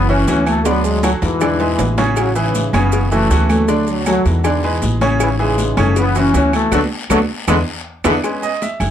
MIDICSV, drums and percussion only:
0, 0, Header, 1, 2, 480
1, 0, Start_track
1, 0, Tempo, 379027
1, 828, Time_signature, 4, 2, 24, 8
1, 11277, End_track
2, 0, Start_track
2, 0, Title_t, "Drums"
2, 112, Note_on_c, 9, 68, 85
2, 115, Note_on_c, 9, 63, 38
2, 239, Note_off_c, 9, 68, 0
2, 242, Note_off_c, 9, 63, 0
2, 347, Note_on_c, 9, 73, 83
2, 348, Note_on_c, 9, 66, 73
2, 348, Note_on_c, 9, 68, 92
2, 352, Note_on_c, 9, 70, 72
2, 355, Note_on_c, 9, 63, 80
2, 356, Note_on_c, 9, 56, 74
2, 473, Note_off_c, 9, 73, 0
2, 475, Note_off_c, 9, 66, 0
2, 475, Note_off_c, 9, 68, 0
2, 478, Note_off_c, 9, 70, 0
2, 481, Note_off_c, 9, 63, 0
2, 483, Note_off_c, 9, 56, 0
2, 586, Note_on_c, 9, 63, 87
2, 589, Note_on_c, 9, 68, 121
2, 590, Note_on_c, 9, 70, 31
2, 590, Note_on_c, 9, 73, 75
2, 596, Note_on_c, 9, 75, 68
2, 712, Note_off_c, 9, 63, 0
2, 715, Note_off_c, 9, 68, 0
2, 717, Note_off_c, 9, 70, 0
2, 717, Note_off_c, 9, 73, 0
2, 723, Note_off_c, 9, 75, 0
2, 827, Note_on_c, 9, 65, 106
2, 827, Note_on_c, 9, 70, 79
2, 832, Note_on_c, 9, 74, 74
2, 834, Note_on_c, 9, 56, 118
2, 954, Note_off_c, 9, 65, 0
2, 954, Note_off_c, 9, 70, 0
2, 959, Note_off_c, 9, 74, 0
2, 961, Note_off_c, 9, 56, 0
2, 1067, Note_on_c, 9, 65, 77
2, 1068, Note_on_c, 9, 70, 67
2, 1070, Note_on_c, 9, 63, 39
2, 1194, Note_off_c, 9, 65, 0
2, 1195, Note_off_c, 9, 70, 0
2, 1197, Note_off_c, 9, 63, 0
2, 1305, Note_on_c, 9, 63, 103
2, 1307, Note_on_c, 9, 70, 78
2, 1311, Note_on_c, 9, 66, 105
2, 1311, Note_on_c, 9, 68, 98
2, 1312, Note_on_c, 9, 73, 86
2, 1315, Note_on_c, 9, 56, 78
2, 1318, Note_on_c, 9, 75, 68
2, 1432, Note_off_c, 9, 63, 0
2, 1434, Note_off_c, 9, 70, 0
2, 1437, Note_off_c, 9, 66, 0
2, 1437, Note_off_c, 9, 68, 0
2, 1439, Note_off_c, 9, 73, 0
2, 1442, Note_off_c, 9, 56, 0
2, 1445, Note_off_c, 9, 75, 0
2, 1544, Note_on_c, 9, 70, 31
2, 1546, Note_on_c, 9, 66, 93
2, 1547, Note_on_c, 9, 63, 39
2, 1552, Note_on_c, 9, 73, 76
2, 1555, Note_on_c, 9, 56, 76
2, 1671, Note_off_c, 9, 70, 0
2, 1673, Note_off_c, 9, 63, 0
2, 1673, Note_off_c, 9, 66, 0
2, 1679, Note_off_c, 9, 73, 0
2, 1682, Note_off_c, 9, 56, 0
2, 1782, Note_on_c, 9, 70, 80
2, 1790, Note_on_c, 9, 56, 109
2, 1790, Note_on_c, 9, 63, 38
2, 1791, Note_on_c, 9, 66, 76
2, 1791, Note_on_c, 9, 68, 114
2, 1793, Note_on_c, 9, 75, 75
2, 1795, Note_on_c, 9, 74, 74
2, 1909, Note_off_c, 9, 70, 0
2, 1916, Note_off_c, 9, 56, 0
2, 1916, Note_off_c, 9, 63, 0
2, 1918, Note_off_c, 9, 66, 0
2, 1918, Note_off_c, 9, 68, 0
2, 1919, Note_off_c, 9, 75, 0
2, 1921, Note_off_c, 9, 74, 0
2, 2023, Note_on_c, 9, 66, 94
2, 2023, Note_on_c, 9, 68, 73
2, 2026, Note_on_c, 9, 63, 39
2, 2149, Note_off_c, 9, 66, 0
2, 2149, Note_off_c, 9, 68, 0
2, 2153, Note_off_c, 9, 63, 0
2, 2263, Note_on_c, 9, 66, 119
2, 2264, Note_on_c, 9, 70, 76
2, 2266, Note_on_c, 9, 56, 72
2, 2266, Note_on_c, 9, 63, 91
2, 2274, Note_on_c, 9, 73, 82
2, 2390, Note_off_c, 9, 66, 0
2, 2390, Note_off_c, 9, 70, 0
2, 2393, Note_off_c, 9, 56, 0
2, 2393, Note_off_c, 9, 63, 0
2, 2401, Note_off_c, 9, 73, 0
2, 2504, Note_on_c, 9, 56, 81
2, 2504, Note_on_c, 9, 70, 32
2, 2507, Note_on_c, 9, 66, 102
2, 2507, Note_on_c, 9, 68, 96
2, 2510, Note_on_c, 9, 63, 81
2, 2511, Note_on_c, 9, 73, 73
2, 2631, Note_off_c, 9, 56, 0
2, 2631, Note_off_c, 9, 70, 0
2, 2634, Note_off_c, 9, 66, 0
2, 2634, Note_off_c, 9, 68, 0
2, 2636, Note_off_c, 9, 63, 0
2, 2637, Note_off_c, 9, 73, 0
2, 2739, Note_on_c, 9, 68, 123
2, 2740, Note_on_c, 9, 70, 80
2, 2747, Note_on_c, 9, 56, 105
2, 2753, Note_on_c, 9, 63, 34
2, 2754, Note_on_c, 9, 74, 77
2, 2755, Note_on_c, 9, 75, 69
2, 2866, Note_off_c, 9, 68, 0
2, 2867, Note_off_c, 9, 70, 0
2, 2873, Note_off_c, 9, 56, 0
2, 2879, Note_off_c, 9, 63, 0
2, 2880, Note_off_c, 9, 74, 0
2, 2882, Note_off_c, 9, 75, 0
2, 2983, Note_on_c, 9, 70, 71
2, 2986, Note_on_c, 9, 68, 84
2, 2988, Note_on_c, 9, 63, 38
2, 3110, Note_off_c, 9, 70, 0
2, 3112, Note_off_c, 9, 68, 0
2, 3115, Note_off_c, 9, 63, 0
2, 3226, Note_on_c, 9, 70, 79
2, 3231, Note_on_c, 9, 63, 71
2, 3231, Note_on_c, 9, 73, 81
2, 3234, Note_on_c, 9, 56, 77
2, 3353, Note_off_c, 9, 70, 0
2, 3358, Note_off_c, 9, 63, 0
2, 3358, Note_off_c, 9, 73, 0
2, 3361, Note_off_c, 9, 56, 0
2, 3464, Note_on_c, 9, 68, 111
2, 3467, Note_on_c, 9, 70, 32
2, 3470, Note_on_c, 9, 56, 82
2, 3471, Note_on_c, 9, 63, 35
2, 3471, Note_on_c, 9, 64, 87
2, 3472, Note_on_c, 9, 73, 69
2, 3472, Note_on_c, 9, 75, 76
2, 3591, Note_off_c, 9, 68, 0
2, 3593, Note_off_c, 9, 70, 0
2, 3596, Note_off_c, 9, 56, 0
2, 3598, Note_off_c, 9, 63, 0
2, 3598, Note_off_c, 9, 64, 0
2, 3598, Note_off_c, 9, 73, 0
2, 3599, Note_off_c, 9, 75, 0
2, 3699, Note_on_c, 9, 70, 77
2, 3711, Note_on_c, 9, 56, 101
2, 3711, Note_on_c, 9, 74, 72
2, 3715, Note_on_c, 9, 63, 37
2, 3826, Note_off_c, 9, 70, 0
2, 3837, Note_off_c, 9, 56, 0
2, 3838, Note_off_c, 9, 74, 0
2, 3841, Note_off_c, 9, 63, 0
2, 3941, Note_on_c, 9, 68, 99
2, 3947, Note_on_c, 9, 70, 65
2, 3954, Note_on_c, 9, 63, 41
2, 4068, Note_off_c, 9, 68, 0
2, 4073, Note_off_c, 9, 70, 0
2, 4081, Note_off_c, 9, 63, 0
2, 4186, Note_on_c, 9, 70, 81
2, 4188, Note_on_c, 9, 66, 75
2, 4188, Note_on_c, 9, 68, 94
2, 4190, Note_on_c, 9, 63, 88
2, 4191, Note_on_c, 9, 56, 71
2, 4194, Note_on_c, 9, 73, 76
2, 4313, Note_off_c, 9, 70, 0
2, 4315, Note_off_c, 9, 66, 0
2, 4315, Note_off_c, 9, 68, 0
2, 4317, Note_off_c, 9, 63, 0
2, 4318, Note_off_c, 9, 56, 0
2, 4321, Note_off_c, 9, 73, 0
2, 4424, Note_on_c, 9, 68, 124
2, 4429, Note_on_c, 9, 70, 32
2, 4430, Note_on_c, 9, 63, 94
2, 4430, Note_on_c, 9, 73, 80
2, 4430, Note_on_c, 9, 75, 72
2, 4550, Note_off_c, 9, 68, 0
2, 4556, Note_off_c, 9, 70, 0
2, 4557, Note_off_c, 9, 63, 0
2, 4557, Note_off_c, 9, 73, 0
2, 4557, Note_off_c, 9, 75, 0
2, 4662, Note_on_c, 9, 70, 76
2, 4667, Note_on_c, 9, 56, 115
2, 4669, Note_on_c, 9, 74, 75
2, 4789, Note_off_c, 9, 70, 0
2, 4794, Note_off_c, 9, 56, 0
2, 4796, Note_off_c, 9, 74, 0
2, 4906, Note_on_c, 9, 70, 64
2, 4909, Note_on_c, 9, 63, 40
2, 5032, Note_off_c, 9, 70, 0
2, 5035, Note_off_c, 9, 63, 0
2, 5142, Note_on_c, 9, 70, 79
2, 5146, Note_on_c, 9, 68, 104
2, 5146, Note_on_c, 9, 75, 73
2, 5149, Note_on_c, 9, 56, 74
2, 5151, Note_on_c, 9, 63, 108
2, 5154, Note_on_c, 9, 73, 89
2, 5269, Note_off_c, 9, 70, 0
2, 5272, Note_off_c, 9, 75, 0
2, 5273, Note_off_c, 9, 68, 0
2, 5275, Note_off_c, 9, 56, 0
2, 5278, Note_off_c, 9, 63, 0
2, 5281, Note_off_c, 9, 73, 0
2, 5388, Note_on_c, 9, 70, 33
2, 5390, Note_on_c, 9, 56, 80
2, 5393, Note_on_c, 9, 63, 39
2, 5393, Note_on_c, 9, 73, 76
2, 5515, Note_off_c, 9, 70, 0
2, 5517, Note_off_c, 9, 56, 0
2, 5519, Note_off_c, 9, 73, 0
2, 5520, Note_off_c, 9, 63, 0
2, 5625, Note_on_c, 9, 68, 116
2, 5627, Note_on_c, 9, 70, 74
2, 5630, Note_on_c, 9, 56, 114
2, 5630, Note_on_c, 9, 75, 71
2, 5631, Note_on_c, 9, 74, 77
2, 5633, Note_on_c, 9, 63, 41
2, 5751, Note_off_c, 9, 68, 0
2, 5754, Note_off_c, 9, 70, 0
2, 5756, Note_off_c, 9, 56, 0
2, 5756, Note_off_c, 9, 75, 0
2, 5758, Note_off_c, 9, 74, 0
2, 5760, Note_off_c, 9, 63, 0
2, 5868, Note_on_c, 9, 68, 72
2, 5870, Note_on_c, 9, 63, 38
2, 5995, Note_off_c, 9, 68, 0
2, 5997, Note_off_c, 9, 63, 0
2, 6101, Note_on_c, 9, 56, 69
2, 6108, Note_on_c, 9, 70, 72
2, 6111, Note_on_c, 9, 63, 83
2, 6111, Note_on_c, 9, 73, 78
2, 6228, Note_off_c, 9, 56, 0
2, 6234, Note_off_c, 9, 70, 0
2, 6237, Note_off_c, 9, 63, 0
2, 6238, Note_off_c, 9, 73, 0
2, 6345, Note_on_c, 9, 63, 89
2, 6349, Note_on_c, 9, 56, 82
2, 6349, Note_on_c, 9, 68, 102
2, 6350, Note_on_c, 9, 73, 80
2, 6351, Note_on_c, 9, 70, 32
2, 6471, Note_off_c, 9, 63, 0
2, 6475, Note_off_c, 9, 56, 0
2, 6476, Note_off_c, 9, 68, 0
2, 6476, Note_off_c, 9, 73, 0
2, 6477, Note_off_c, 9, 70, 0
2, 6587, Note_on_c, 9, 56, 117
2, 6588, Note_on_c, 9, 68, 109
2, 6588, Note_on_c, 9, 70, 80
2, 6589, Note_on_c, 9, 74, 76
2, 6595, Note_on_c, 9, 75, 69
2, 6713, Note_off_c, 9, 56, 0
2, 6715, Note_off_c, 9, 68, 0
2, 6715, Note_off_c, 9, 70, 0
2, 6716, Note_off_c, 9, 74, 0
2, 6721, Note_off_c, 9, 75, 0
2, 6827, Note_on_c, 9, 63, 38
2, 6836, Note_on_c, 9, 68, 82
2, 6953, Note_off_c, 9, 63, 0
2, 6962, Note_off_c, 9, 68, 0
2, 7066, Note_on_c, 9, 63, 66
2, 7067, Note_on_c, 9, 56, 78
2, 7071, Note_on_c, 9, 70, 77
2, 7076, Note_on_c, 9, 73, 84
2, 7193, Note_off_c, 9, 63, 0
2, 7194, Note_off_c, 9, 56, 0
2, 7198, Note_off_c, 9, 70, 0
2, 7202, Note_off_c, 9, 73, 0
2, 7306, Note_on_c, 9, 63, 39
2, 7306, Note_on_c, 9, 64, 86
2, 7308, Note_on_c, 9, 56, 79
2, 7311, Note_on_c, 9, 68, 117
2, 7313, Note_on_c, 9, 73, 82
2, 7315, Note_on_c, 9, 70, 33
2, 7316, Note_on_c, 9, 75, 70
2, 7432, Note_off_c, 9, 63, 0
2, 7432, Note_off_c, 9, 64, 0
2, 7435, Note_off_c, 9, 56, 0
2, 7438, Note_off_c, 9, 68, 0
2, 7440, Note_off_c, 9, 73, 0
2, 7442, Note_off_c, 9, 70, 0
2, 7443, Note_off_c, 9, 75, 0
2, 7547, Note_on_c, 9, 63, 40
2, 7551, Note_on_c, 9, 70, 77
2, 7552, Note_on_c, 9, 56, 113
2, 7554, Note_on_c, 9, 74, 74
2, 7674, Note_off_c, 9, 63, 0
2, 7677, Note_off_c, 9, 70, 0
2, 7679, Note_off_c, 9, 56, 0
2, 7680, Note_off_c, 9, 74, 0
2, 7789, Note_on_c, 9, 70, 69
2, 7791, Note_on_c, 9, 68, 86
2, 7793, Note_on_c, 9, 63, 37
2, 7916, Note_off_c, 9, 70, 0
2, 7918, Note_off_c, 9, 68, 0
2, 7920, Note_off_c, 9, 63, 0
2, 8024, Note_on_c, 9, 63, 84
2, 8031, Note_on_c, 9, 56, 72
2, 8031, Note_on_c, 9, 66, 81
2, 8031, Note_on_c, 9, 68, 93
2, 8035, Note_on_c, 9, 70, 79
2, 8036, Note_on_c, 9, 73, 73
2, 8151, Note_off_c, 9, 63, 0
2, 8158, Note_off_c, 9, 56, 0
2, 8158, Note_off_c, 9, 66, 0
2, 8158, Note_off_c, 9, 68, 0
2, 8161, Note_off_c, 9, 70, 0
2, 8163, Note_off_c, 9, 73, 0
2, 8271, Note_on_c, 9, 63, 87
2, 8273, Note_on_c, 9, 68, 119
2, 8274, Note_on_c, 9, 75, 73
2, 8276, Note_on_c, 9, 70, 31
2, 8276, Note_on_c, 9, 73, 80
2, 8397, Note_off_c, 9, 63, 0
2, 8400, Note_off_c, 9, 68, 0
2, 8401, Note_off_c, 9, 75, 0
2, 8402, Note_off_c, 9, 70, 0
2, 8403, Note_off_c, 9, 73, 0
2, 8506, Note_on_c, 9, 56, 106
2, 8510, Note_on_c, 9, 75, 102
2, 8513, Note_on_c, 9, 63, 99
2, 8513, Note_on_c, 9, 65, 107
2, 8514, Note_on_c, 9, 70, 100
2, 8517, Note_on_c, 9, 74, 112
2, 8633, Note_off_c, 9, 56, 0
2, 8636, Note_off_c, 9, 75, 0
2, 8640, Note_off_c, 9, 63, 0
2, 8640, Note_off_c, 9, 65, 0
2, 8640, Note_off_c, 9, 70, 0
2, 8644, Note_off_c, 9, 74, 0
2, 8987, Note_on_c, 9, 63, 115
2, 8990, Note_on_c, 9, 65, 94
2, 8991, Note_on_c, 9, 75, 108
2, 8993, Note_on_c, 9, 74, 110
2, 8996, Note_on_c, 9, 56, 99
2, 9000, Note_on_c, 9, 70, 112
2, 9113, Note_off_c, 9, 63, 0
2, 9117, Note_off_c, 9, 65, 0
2, 9118, Note_off_c, 9, 75, 0
2, 9119, Note_off_c, 9, 74, 0
2, 9122, Note_off_c, 9, 56, 0
2, 9127, Note_off_c, 9, 70, 0
2, 9469, Note_on_c, 9, 65, 105
2, 9469, Note_on_c, 9, 70, 107
2, 9471, Note_on_c, 9, 63, 101
2, 9472, Note_on_c, 9, 56, 106
2, 9473, Note_on_c, 9, 75, 106
2, 9477, Note_on_c, 9, 74, 104
2, 9596, Note_off_c, 9, 65, 0
2, 9596, Note_off_c, 9, 70, 0
2, 9598, Note_off_c, 9, 63, 0
2, 9599, Note_off_c, 9, 56, 0
2, 9599, Note_off_c, 9, 75, 0
2, 9603, Note_off_c, 9, 74, 0
2, 10185, Note_on_c, 9, 75, 104
2, 10186, Note_on_c, 9, 65, 115
2, 10189, Note_on_c, 9, 63, 101
2, 10189, Note_on_c, 9, 70, 110
2, 10196, Note_on_c, 9, 56, 110
2, 10196, Note_on_c, 9, 74, 109
2, 10312, Note_off_c, 9, 65, 0
2, 10312, Note_off_c, 9, 75, 0
2, 10316, Note_off_c, 9, 63, 0
2, 10316, Note_off_c, 9, 70, 0
2, 10323, Note_off_c, 9, 56, 0
2, 10323, Note_off_c, 9, 74, 0
2, 10429, Note_on_c, 9, 75, 73
2, 10432, Note_on_c, 9, 68, 101
2, 10433, Note_on_c, 9, 63, 33
2, 10435, Note_on_c, 9, 70, 73
2, 10436, Note_on_c, 9, 74, 74
2, 10437, Note_on_c, 9, 56, 108
2, 10556, Note_off_c, 9, 75, 0
2, 10559, Note_off_c, 9, 68, 0
2, 10560, Note_off_c, 9, 63, 0
2, 10561, Note_off_c, 9, 70, 0
2, 10562, Note_off_c, 9, 74, 0
2, 10564, Note_off_c, 9, 56, 0
2, 10670, Note_on_c, 9, 63, 37
2, 10670, Note_on_c, 9, 68, 83
2, 10677, Note_on_c, 9, 70, 62
2, 10796, Note_off_c, 9, 63, 0
2, 10797, Note_off_c, 9, 68, 0
2, 10804, Note_off_c, 9, 70, 0
2, 10914, Note_on_c, 9, 56, 74
2, 10916, Note_on_c, 9, 73, 81
2, 10918, Note_on_c, 9, 63, 66
2, 10918, Note_on_c, 9, 70, 76
2, 11041, Note_off_c, 9, 56, 0
2, 11043, Note_off_c, 9, 73, 0
2, 11045, Note_off_c, 9, 63, 0
2, 11045, Note_off_c, 9, 70, 0
2, 11145, Note_on_c, 9, 75, 67
2, 11147, Note_on_c, 9, 68, 108
2, 11151, Note_on_c, 9, 73, 73
2, 11153, Note_on_c, 9, 56, 80
2, 11157, Note_on_c, 9, 70, 32
2, 11158, Note_on_c, 9, 63, 35
2, 11158, Note_on_c, 9, 64, 90
2, 11272, Note_off_c, 9, 75, 0
2, 11274, Note_off_c, 9, 68, 0
2, 11277, Note_off_c, 9, 56, 0
2, 11277, Note_off_c, 9, 63, 0
2, 11277, Note_off_c, 9, 64, 0
2, 11277, Note_off_c, 9, 70, 0
2, 11277, Note_off_c, 9, 73, 0
2, 11277, End_track
0, 0, End_of_file